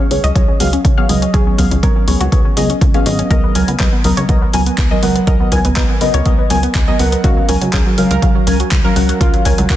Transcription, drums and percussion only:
0.11 open hi-hat
0.24 closed hi-hat
0.36 kick, closed hi-hat
0.60 open hi-hat
0.73 closed hi-hat
0.85 kick, closed hi-hat
1.09 open hi-hat
1.22 closed hi-hat
1.34 kick, closed hi-hat
1.58 kick, open hi-hat
1.71 closed hi-hat
1.83 kick, closed hi-hat
2.08 open hi-hat
2.21 closed hi-hat
2.32 kick, closed hi-hat
2.57 open hi-hat
2.70 closed hi-hat
2.81 kick, closed hi-hat
2.94 closed hi-hat
3.06 open hi-hat
3.19 closed hi-hat
3.31 kick, closed hi-hat
3.55 open hi-hat
3.68 closed hi-hat
3.80 kick, clap, closed hi-hat
4.04 open hi-hat
4.17 closed hi-hat
4.29 kick, closed hi-hat
4.53 open hi-hat
4.66 closed hi-hat
4.78 kick, clap, closed hi-hat
5.03 open hi-hat
5.16 closed hi-hat
5.27 kick, closed hi-hat
5.52 kick, open hi-hat
5.65 closed hi-hat
5.76 kick, clap, closed hi-hat
6.01 open hi-hat
6.14 closed hi-hat
6.26 kick, closed hi-hat
6.50 open hi-hat
6.63 closed hi-hat
6.75 kick, clap, closed hi-hat
6.99 open hi-hat
7.12 closed hi-hat
7.24 kick, closed hi-hat
7.49 open hi-hat
7.62 closed hi-hat
7.73 kick, clap, closed hi-hat
7.98 open hi-hat
8.11 closed hi-hat
8.22 kick, closed hi-hat
8.47 open hi-hat
8.60 closed hi-hat
8.71 kick, clap, closed hi-hat
8.96 open hi-hat
9.09 closed hi-hat
9.21 kick, closed hi-hat
9.34 closed hi-hat
9.45 kick, open hi-hat
9.58 closed hi-hat
9.70 kick, clap, closed hi-hat

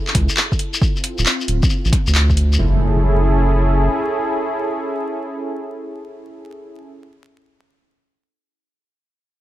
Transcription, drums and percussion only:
0.07 clap, shekere
0.15 kick, snare, open hi-hat
0.29 shekere
0.37 clap, shekere
0.52 kick, shekere
0.59 open hi-hat
0.74 shekere
0.82 kick, shekere
0.96 shekere
1.04 open hi-hat
1.18 shekere
1.26 clap, shekere
1.41 shekere
1.48 open hi-hat
1.63 kick, shekere
1.70 shekere
1.85 shekere
1.93 kick, snare, open hi-hat
2.07 shekere
2.14 clap, shekere
2.30 kick, shekere
2.37 open hi-hat
2.53 shekere

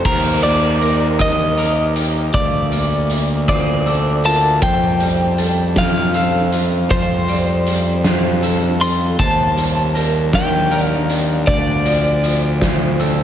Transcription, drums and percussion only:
0.05 kick, crash
0.43 closed hi-hat
0.81 closed hi-hat
1.19 kick, cross-stick, closed hi-hat
1.58 closed hi-hat
1.96 closed hi-hat
2.34 kick, closed hi-hat
2.72 closed hi-hat
3.10 closed hi-hat
3.48 kick, cross-stick, closed hi-hat
3.86 closed hi-hat
4.24 closed hi-hat
4.62 kick, closed hi-hat
5.00 closed hi-hat
5.38 closed hi-hat
5.76 kick, snare, closed hi-hat
6.14 closed hi-hat
6.52 closed hi-hat
6.90 kick, closed hi-hat
7.28 closed hi-hat
7.66 closed hi-hat
8.04 snare, closed hi-hat
8.43 closed hi-hat
8.81 closed hi-hat
9.19 kick, closed hi-hat
9.57 closed hi-hat
9.95 closed hi-hat
10.33 kick, snare, closed hi-hat
10.71 closed hi-hat
11.10 closed hi-hat
11.47 kick, closed hi-hat
11.85 closed hi-hat
12.24 closed hi-hat
12.61 kick, snare, closed hi-hat
12.99 closed hi-hat

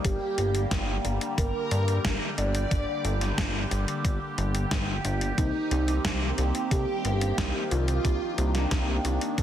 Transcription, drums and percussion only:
0.05 kick, closed hi-hat
0.38 closed hi-hat
0.55 closed hi-hat
0.71 kick, snare, closed hi-hat
1.05 closed hi-hat
1.21 closed hi-hat
1.38 kick, closed hi-hat
1.71 closed hi-hat
1.88 closed hi-hat
2.05 kick, snare, closed hi-hat
2.38 closed hi-hat
2.55 closed hi-hat
2.71 kick, closed hi-hat
3.05 closed hi-hat
3.21 snare, closed hi-hat
3.38 kick, snare, closed hi-hat
3.71 closed hi-hat
3.88 closed hi-hat
4.05 kick, closed hi-hat
4.38 closed hi-hat
4.55 closed hi-hat
4.71 kick, snare, closed hi-hat
5.05 closed hi-hat
5.21 closed hi-hat
5.38 kick, closed hi-hat
5.71 closed hi-hat
5.88 closed hi-hat
6.05 kick, snare, closed hi-hat
6.38 closed hi-hat
6.55 closed hi-hat
6.71 kick, closed hi-hat
7.05 closed hi-hat
7.21 closed hi-hat
7.38 kick, snare, closed hi-hat
7.71 closed hi-hat
7.88 closed hi-hat
8.05 kick, closed hi-hat
8.38 closed hi-hat
8.55 snare, closed hi-hat
8.71 kick, snare, closed hi-hat
9.05 closed hi-hat
9.21 closed hi-hat
9.38 kick, closed hi-hat

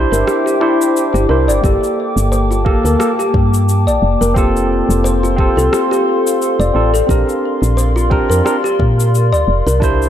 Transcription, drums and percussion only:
0.13 cabasa
0.27 cross-stick, cabasa
0.47 cabasa
0.82 cabasa
0.97 cabasa
1.16 cabasa
1.50 cabasa
1.64 kick, cabasa
1.84 cabasa
2.18 cabasa
2.33 cabasa
2.52 cabasa
2.66 kick
2.86 cabasa
3.00 cross-stick, cabasa
3.20 cabasa
3.34 kick
3.54 cabasa
3.69 cabasa
3.88 cabasa
4.22 cabasa
4.36 kick, cabasa
4.57 cabasa
4.91 cabasa
5.06 cabasa
5.25 cabasa
5.38 kick
5.59 cabasa
5.73 cross-stick, cabasa
5.93 cabasa
6.27 cabasa
6.42 cabasa
6.61 cabasa
6.95 cabasa
7.09 kick, cabasa
7.29 cabasa
7.63 cabasa
7.78 cabasa
7.98 cabasa
8.11 kick
8.31 cabasa
8.46 cross-stick, cabasa
8.66 cabasa
8.80 kick
9.00 cabasa
9.15 cabasa
9.34 cabasa
9.68 cabasa
9.82 kick, cabasa
10.02 cabasa

